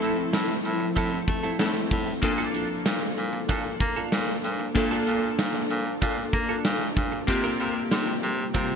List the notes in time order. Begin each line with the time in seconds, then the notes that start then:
Already playing: F3 A3 C4 E4 A4
0.01 A2 C4 E4 A4, closed hi-hat
0.17 muted clean electric guitar stroke
0.33 A2, muted clean electric guitar stroke, snare, closed hi-hat, tambourine
0.49 muted clean electric guitar stroke
0.65 A2, closed hi-hat
0.80 muted clean electric guitar stroke
0.96 A2 C4 E4 A4, kick, closed hi-hat
1.12 muted clean electric guitar stroke
1.28 A3, muted clean electric guitar stroke, kick, closed hi-hat
1.43 C4 E4 A4, closed hi-hat
1.59 A2 A3 C4 E4 A4, snare, closed hi-hat, tambourine
1.75 muted clean electric guitar stroke
1.91 A2, kick, open hi-hat
2.07 muted clean electric guitar stroke
2.22 A#2 A#3 D4 F4 A4, muted clean electric guitar stroke, kick, closed hi-hat
2.38 D4 F4 A4
2.54 D4 F4 A4, closed hi-hat
2.70 muted clean electric guitar stroke
2.86 A#2, muted clean electric guitar stroke, snare, closed hi-hat, tambourine
3.02 muted clean electric guitar stroke
3.17 A#2, closed hi-hat
3.33 muted clean electric guitar stroke
3.49 A#2 D4 F4 A4, kick, closed hi-hat
3.65 muted clean electric guitar stroke
3.80 A#3, muted clean electric guitar stroke, kick, closed hi-hat
3.96 D4 F4 A4
4.12 A#2, snare, closed hi-hat, tambourine
4.28 muted clean electric guitar stroke
4.44 A#2, closed hi-hat
4.60 muted clean electric guitar stroke
4.75 A#2 A#3 D4 F4 A4, muted clean electric guitar stroke, kick, closed hi-hat
4.91 D4 F4 A4
5.07 A#2 D4 F4 A4, closed hi-hat
5.23 muted clean electric guitar stroke
5.39 A#2, muted clean electric guitar stroke, snare, closed hi-hat, tambourine
5.55 muted clean electric guitar stroke
5.70 A#2, closed hi-hat
5.86 muted clean electric guitar stroke
6.02 A#2 D4 F4 A4, kick, closed hi-hat
6.18 muted clean electric guitar stroke
6.33 A#3, muted clean electric guitar stroke, kick, closed hi-hat
6.49 D4 F4 A4
6.65 A#2, snare, closed hi-hat, tambourine
6.81 muted clean electric guitar stroke
6.97 A#2, kick, closed hi-hat
7.12 muted clean electric guitar stroke
7.27 C3 G3 A#3 C4 F4 G4, muted clean electric guitar stroke, kick, closed hi-hat
7.44 C4 F4 A#4
7.60 C3 C4 F4 A#4, closed hi-hat
7.75 muted clean electric guitar stroke
7.91 C3, muted clean electric guitar stroke, snare, closed hi-hat, tambourine
8.07 muted clean electric guitar stroke
8.23 C3, closed hi-hat
8.39 muted clean electric guitar stroke
8.54 C3 C4 F4 A#4, kick, closed hi-hat
8.70 muted clean electric guitar stroke